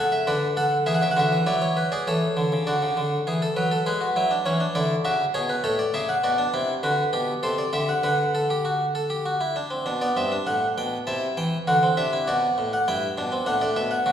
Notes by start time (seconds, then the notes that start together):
Already playing: C#3 A4 F#5
0.12 E5
0.27 D3 B4 D5
0.57 A4 F#5
0.86 E3 G#4 E5
0.94 F#5
1.02 C#3 E5
1.11 F#5
1.17 D3 F#4 E5
1.32 E3
1.46 F#3 E4 D5
1.62 C#5
1.77 B4
1.92 G#4 D5
2.07 E3 A4 C#5
2.37 D3
2.52 C#3
2.67 D3 F#4 D5
2.82 C#3
2.97 D3
3.27 E3 G#4
3.42 A4
3.56 F#3 B4
3.71 A4
3.86 G#3 G#4 B4
4.01 F#4
4.16 F#3 E4
4.31 D4
4.46 E3 C#4 C#5
4.60 D4
4.75 D3 E4 D5
5.05 C#3 F#4 E5
5.34 B2 G#4 C#5
5.49 B4
5.64 A2 A4 C#5
5.79 D5
5.94 C#3 G#4 E5
6.09 F#5
6.24 B2 F#4 D5
6.38 D4
6.54 C3 E4
6.83 D3 F#4 B4
7.13 B2 G4
7.43 C3 A4 C5
7.58 D5
7.73 D3 G4 E5
7.89 F#5
8.03 D3 B4 F#5
8.35 A4
8.50 G4
8.65 F#4
8.95 A4
9.10 G4
9.26 F#4
9.41 E4
9.56 D4
9.71 C4
9.86 B2 D4
10.01 B3 D5
10.17 G2 C4 E5
10.32 D4
10.47 A2 F#5
10.78 B2 G5
11.07 C3 E4 A5
11.37 E3 G5
11.67 D3 F#4 F#5
11.83 C4
11.97 C3 D4 E5
12.13 E4
12.28 B2 F#4 D5
12.58 A2
12.73 F#5
12.88 G2 E4 G5
13.18 B2 D4
13.32 C4
13.46 A2 D4 F#5
13.61 A2 D5
13.76 B2 E5
13.91 F#5
14.06 C#3 F#4